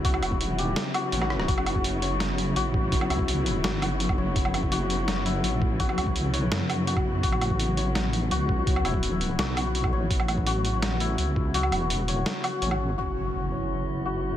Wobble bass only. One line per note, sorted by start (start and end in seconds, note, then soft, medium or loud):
0.00 0.21 C#2 medium
0.23 0.60 E1 medium
0.60 0.75 D#1 medium
1.13 1.47 A1 medium
1.48 2.55 F#1 loud
2.56 3.09 A1 medium
3.10 3.63 C#2 loud
3.64 4.17 G1 medium
4.18 4.34 F#1 medium
4.36 5.42 F#1 loud
5.44 5.96 A1 medium
5.98 6.35 C#2 loud
6.35 6.50 C2 loud
6.51 7.22 F#2 loud
7.23 8.30 A1 medium
8.31 8.84 C#2 loud
8.85 9.38 E1 medium
9.39 9.91 B1 medium
9.93 10.09 A1 loud
10.10 11.17 A1 medium
11.19 11.71 C#2 medium
11.72 12.09 E1 medium
12.09 12.25 D#1 medium
12.62 12.97 A1 medium
12.98 14.37 F#1 medium